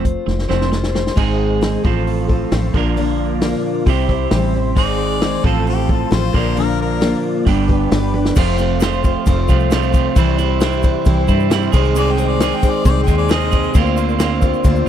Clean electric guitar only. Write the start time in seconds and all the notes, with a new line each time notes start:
0.05 F3 A3
0.26 F3 A3
0.49 F3 A3 C4
0.71 F3 A3
0.95 F3 A3
1.16 G#2 D#3 G#3 C4 D#4 G#4
1.84 A2 F3 C4 F4 A4
2.74 A#2 D3 F3 A#3 D4 A#4
3.86 C3 G3 C4 E4 G4
4.76 G#2 D#3 G#3 C4 D#4 G#4
5.43 A2 F3 C4 F4 A4
6.33 A#2 D3 F3 A#3 D4 A#4
7.45 G2 D3 G3 B3 D4 G4
8.36 F2 C3 F3 A3 C4 F4
8.58 F3 A3 C4 F4
8.80 F3 A3 C4 F4
9.49 F3 A3 C4 F4
9.71 F2 C3 F3 A3 C4 F4
9.93 F3 A3 C4 F4
10.16 C3 E3 G3 C4 E4
10.38 G3 C4 E4
10.61 E3 G3 C4 E4
11.28 G3 C4 E4
11.50 C3 E3 G3 C4 E4
11.72 C3 D#3 G#3 C4 G#4
11.95 C3 D#3 G#3 C4 G#4
12.17 G#3 C4 G#4
12.40 D#3 G#3 C4 G#4
13.07 G#3 C4 G#4
13.28 C3 D#3 G#3 C4 G#4
13.51 G#3 C4 G#4
13.74 D3 A#3 C4 F4
13.96 A#3 C4 F4
14.19 D3 A#3 C4 F4